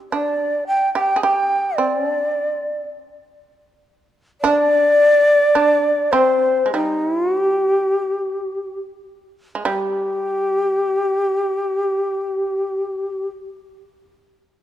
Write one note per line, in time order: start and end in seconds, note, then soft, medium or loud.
0.12 0.92 D4 medium
0.12 0.64 D5 medium
0.67 0.93 G5 medium
0.95 1.15 G4 medium
0.95 1.21 G5 medium
1.16 1.23 G#4 soft
1.23 1.74 G4 medium
1.23 1.78 G5 medium
1.76 2.08 C4 medium
1.76 2.83 D5 medium
2.08 2.80 D4 medium
4.41 5.49 D4 medium
4.41 6.13 D5 loud
5.55 6.08 D4 medium
6.12 6.62 C4 medium
6.12 6.72 C5 medium
6.66 6.73 G#3 soft
6.73 8.78 G3 medium
6.73 7.04 D#4 medium
7.04 7.16 E4 medium
7.16 7.39 F4 medium
7.39 8.78 G4 medium
9.55 9.65 G#3 soft
9.64 13.30 G3 medium
9.64 13.29 G4 medium